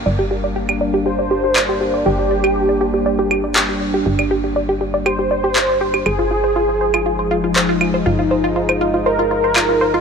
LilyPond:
<<
  \new Staff \with { instrumentName = "Analog synth lead" } { \time 4/4 \key g \phrygian \tempo 4 = 120 r2 c''2 | g'2. r4 | r2 c''2 | aes'2. r4 |
r2 bes'2 | }
  \new Staff \with { instrumentName = "Synth arpeggio sound" } { \time 4/4 \key g \phrygian d''16 g'16 g'16 d''16 g'16 g'16 d''16 g'16 g'16 d''16 g'16 g'16 d''16 g'16 g'16 d''16 | g'16 g'16 d''16 g'16 g'16 d''16 g'16 g'16 d''16 g'16 g'16 d''16 g'16 g'16 d''16 g'16 | g'16 d''16 g'16 g'16 d''16 g'16 g'16 d''16 g'16 g'16 d''16 g'16 g'16 d''16 g'16 g'16 | c''16 f'16 f'16 c''16 f'16 f'16 c''16 f'16 f'16 c''16 f'16 f'16 c''16 f'16 f'16 c''16 |
f'16 f'16 c''16 f'16 f'16 c''16 f'16 f'16 c''16 f'16 f'16 c''16 f'16 f'16 c''16 f'16 | }
  \new Staff \with { instrumentName = "Analog synth pad" } { \time 4/4 \key g \phrygian <g bes d'>1~ | <g bes d'>1~ | <g bes d'>1 | <f aes ees'>1~ |
<f aes ees'>1 | }
  \new Staff \with { instrumentName = "Analog synth bass" } { \clef bass \time 4/4 \key g \phrygian g,,1 | g,,1 | g,,1 | g,,1 |
g,,1 | }
  \new DrumStaff \with { instrumentName = "Drums" } \drummode { \time 4/4 r4 r16 cl8. r4 <hc cl>4 | r8. cl16 r4 r8 cl8 hc4 | r16 cl8. r4 cl4 hc8. cl16 | cl4 r8. cl16 r4 hc8 cl8 |
r4 r16 cl8. r4 <hc cl>4 | }
>>